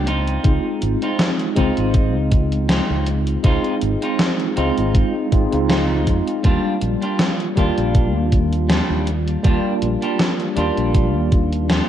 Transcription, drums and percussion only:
0.07 closed hi-hat medium
0.27 closed hi-hat medium
0.44 kick loud
0.44 closed hi-hat medium
0.82 closed hi-hat medium
1.02 closed hi-hat medium
1.19 snare loud
1.19 closed hi-hat medium
1.39 closed hi-hat soft
1.56 kick medium
1.56 closed hi-hat medium
1.77 closed hi-hat medium
1.94 kick loud
1.94 closed hi-hat medium
2.32 kick loud
2.32 closed hi-hat medium
2.52 closed hi-hat soft
2.69 snare loud
2.69 closed hi-hat medium
3.07 closed hi-hat medium
3.27 closed hi-hat medium
3.44 kick loud
3.44 closed hi-hat medium
3.64 closed hi-hat soft
3.81 closed hi-hat medium
4.02 closed hi-hat medium
4.19 snare loud
4.19 closed hi-hat medium
4.40 closed hi-hat soft
4.57 closed hi-hat medium
4.78 closed hi-hat soft
4.95 kick loud
4.95 closed hi-hat medium
5.32 kick loud
5.32 closed hi-hat medium
5.52 closed hi-hat soft
5.69 snare loud
5.69 closed hi-hat medium
6.07 kick medium
6.07 closed hi-hat medium
6.28 closed hi-hat soft
6.44 kick loud
6.44 closed hi-hat medium
6.82 closed hi-hat medium
7.03 closed hi-hat soft
7.19 snare loud
7.19 closed hi-hat medium
7.40 closed hi-hat soft
7.57 kick medium
7.57 closed hi-hat medium
7.78 closed hi-hat soft
7.95 kick loud
7.95 closed hi-hat medium
8.32 kick loud
8.32 closed hi-hat medium
8.53 closed hi-hat soft
8.69 snare loud
8.69 closed hi-hat medium
9.07 closed hi-hat medium
9.28 closed hi-hat soft
9.44 kick loud
9.44 closed hi-hat medium
9.82 closed hi-hat medium
10.02 closed hi-hat soft
10.19 snare loud
10.19 closed hi-hat medium
10.40 closed hi-hat soft
10.57 closed hi-hat medium
10.78 closed hi-hat soft
10.95 kick loud
10.95 closed hi-hat medium
11.32 kick loud
11.32 closed hi-hat medium
11.53 closed hi-hat soft
11.70 snare loud
11.70 closed hi-hat medium

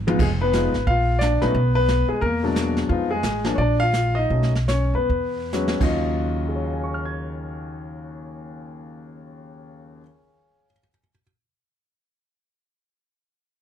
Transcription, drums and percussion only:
0.08 high tom medium
0.19 brush sweep soft
0.19 kick medium
0.19 crash medium
0.53 snare medium
0.53 hi-hat pedal medium
0.74 snare soft
0.87 brush sweep medium
0.87 kick soft
1.21 snare medium
1.21 hi-hat pedal medium
1.42 snare soft
1.55 brush sweep soft
1.55 kick soft
1.88 snare medium
1.88 hi-hat pedal medium
2.22 brush sweep medium
2.22 kick soft
2.56 snare medium
2.56 hi-hat pedal medium
2.77 snare soft
2.90 brush sweep soft
2.90 kick soft
3.23 snare medium
3.23 hi-hat pedal soft
3.44 snare medium
3.58 brush sweep soft
3.58 kick soft
3.93 snare medium
3.93 hi-hat pedal soft
4.30 brush sweep soft
4.30 kick soft
4.43 snare soft
4.55 snare soft
4.68 snare medium
4.68 hi-hat pedal soft
5.10 brush sweep soft
5.10 kick soft
5.52 snare soft
5.52 hi-hat pedal medium
5.68 snare medium
5.81 kick medium
5.81 crash medium

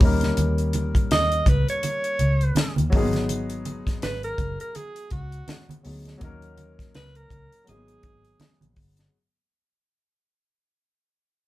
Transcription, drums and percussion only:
0.00 kick loud
0.00 open hi-hat medium
0.21 snare soft
0.21 closed hi-hat medium
0.21 high conga soft
0.37 closed hi-hat medium
0.37 muted conga soft
0.58 closed hi-hat soft
0.73 closed hi-hat medium
0.73 muted conga medium
0.95 kick medium
0.95 closed hi-hat medium
1.11 snare loud
1.11 closed hi-hat medium
1.11 high conga medium
1.32 closed hi-hat soft
1.46 kick loud
1.46 closed hi-hat medium
1.46 low conga medium
1.69 closed hi-hat medium
1.83 closed hi-hat loud
1.83 muted conga medium
2.04 closed hi-hat medium
2.19 closed hi-hat medium
2.19 low conga medium
2.41 closed hi-hat soft
2.55 snare loud
2.55 closed hi-hat loud
2.55 high conga medium
2.76 closed hi-hat medium
2.76 high conga medium
2.92 kick loud
2.92 open hi-hat medium
3.13 snare soft
3.13 closed hi-hat medium
3.13 high conga soft
3.29 closed hi-hat medium
3.29 muted conga soft
3.50 closed hi-hat soft
3.65 closed hi-hat medium
3.65 muted conga medium
3.87 kick medium
3.87 snare soft
3.87 closed hi-hat medium
4.02 snare loud
4.02 closed hi-hat medium
4.02 high conga medium
4.23 closed hi-hat soft
4.38 kick loud
4.38 closed hi-hat medium
4.38 low conga medium
4.60 closed hi-hat medium
4.75 closed hi-hat medium
4.75 muted conga soft
4.96 closed hi-hat medium
5.10 kick medium
5.10 closed hi-hat medium
5.10 muted conga soft
5.32 closed hi-hat soft
5.48 snare loud
5.48 closed hi-hat loud
5.48 high conga medium
5.69 closed hi-hat medium
5.69 high conga medium
5.85 open hi-hat medium
6.05 snare soft
6.05 closed hi-hat medium
6.05 high conga soft
6.21 kick loud
6.21 closed hi-hat medium
6.21 muted conga soft
6.42 closed hi-hat soft
6.58 closed hi-hat medium
6.58 muted conga medium
6.79 kick medium
6.79 snare soft
6.79 closed hi-hat medium
6.95 snare loud
6.95 closed hi-hat medium
6.95 high conga medium
7.15 closed hi-hat soft
7.30 kick loud
7.30 closed hi-hat medium
7.30 low conga medium
7.52 closed hi-hat medium
7.67 closed hi-hat loud
7.67 muted conga medium
7.88 closed hi-hat soft
8.03 kick medium
8.03 closed hi-hat medium
8.03 muted conga soft
8.03 low conga medium
8.25 closed hi-hat soft
8.40 snare loud
8.40 closed hi-hat medium
8.40 high conga medium
8.61 closed hi-hat medium
8.61 high conga medium
8.76 kick medium
8.76 open hi-hat medium
8.97 snare soft
8.97 closed hi-hat medium

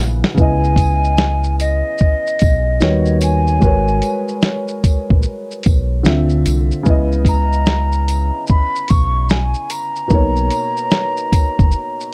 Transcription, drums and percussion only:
0.24 snare medium
0.38 kick loud
0.38 shaker medium
0.64 shaker soft
0.76 kick medium
0.76 closed hi-hat medium
0.76 tambourine soft
0.76 shaker soft
1.04 shaker soft
1.17 snare loud
1.17 shaker medium
1.44 shaker soft
1.60 closed hi-hat medium
1.60 tambourine medium
1.60 shaker soft
1.98 kick medium
1.98 shaker medium
2.27 shaker soft
2.39 kick medium
2.39 closed hi-hat medium
2.39 tambourine soft
2.39 shaker soft
2.81 snare loud
2.81 shaker medium
3.05 shaker soft
3.21 closed hi-hat medium
3.21 tambourine medium
3.21 shaker medium
3.47 shaker soft
3.62 kick loud
3.62 shaker medium
3.88 shaker soft
4.02 closed hi-hat medium
4.02 tambourine soft
4.02 shaker soft
4.28 shaker soft
4.42 snare loud
4.42 shaker medium
4.68 shaker soft
4.84 kick medium
4.84 closed hi-hat medium
4.84 tambourine medium
4.84 shaker soft
5.10 kick medium
5.23 shaker medium
5.51 shaker soft
5.63 kick loud
5.63 closed hi-hat medium
5.63 tambourine soft
5.63 shaker soft
6.05 snare loud
6.05 shaker medium
6.29 shaker soft
6.46 closed hi-hat medium
6.46 tambourine medium
6.46 shaker medium
6.71 shaker soft
6.86 kick loud
6.86 shaker medium
7.12 shaker soft
7.25 kick medium
7.25 closed hi-hat medium
7.25 tambourine soft
7.25 shaker soft
7.53 shaker soft
7.66 snare loud
7.66 shaker medium
7.92 shaker soft
8.08 closed hi-hat medium
8.08 tambourine medium
8.08 shaker soft
8.47 kick medium
8.47 shaker medium
8.76 shaker soft
8.88 kick loud
8.88 closed hi-hat medium
8.88 tambourine soft
8.88 shaker soft
9.29 snare loud
9.29 shaker medium
9.54 shaker soft
9.70 closed hi-hat medium
9.70 tambourine medium
9.70 shaker soft
9.96 shaker soft
10.10 kick loud
10.10 shaker medium
10.36 shaker soft
10.50 closed hi-hat medium
10.50 tambourine soft
10.50 shaker soft
10.77 shaker soft
10.91 snare loud
10.91 shaker medium
11.17 shaker soft
11.32 kick medium
11.32 closed hi-hat medium
11.32 tambourine medium
11.32 shaker soft
11.59 kick medium
11.59 shaker soft
11.71 shaker medium
12.01 shaker soft

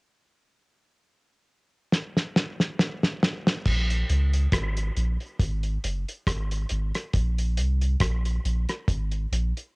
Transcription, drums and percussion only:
1.92 snare medium
2.17 snare medium
2.36 snare medium
2.60 snare medium
2.79 snare medium
3.03 snare medium
3.23 snare loud
3.47 snare medium
3.65 kick loud
3.65 crash medium
3.90 closed hi-hat medium
4.09 closed hi-hat medium
4.33 closed hi-hat medium
4.52 kick loud
4.52 cross-stick loud
4.52 closed hi-hat loud
4.77 closed hi-hat medium
4.97 closed hi-hat medium
5.21 closed hi-hat medium
5.40 kick loud
5.40 closed hi-hat medium
5.63 closed hi-hat soft
5.84 closed hi-hat medium
6.09 closed hi-hat soft
6.27 kick loud
6.27 cross-stick loud
6.27 closed hi-hat medium
6.51 closed hi-hat medium
6.69 closed hi-hat medium
6.95 cross-stick medium
6.95 closed hi-hat medium
7.13 kick medium
7.13 closed hi-hat medium
7.38 closed hi-hat medium
7.57 closed hi-hat medium
7.81 closed hi-hat medium
8.00 kick loud
8.00 cross-stick loud
8.00 closed hi-hat loud
8.25 closed hi-hat medium
8.45 closed hi-hat medium
8.69 cross-stick medium
8.69 closed hi-hat medium
8.88 kick loud
8.88 closed hi-hat medium
9.12 closed hi-hat medium
9.33 closed hi-hat medium
9.57 closed hi-hat soft

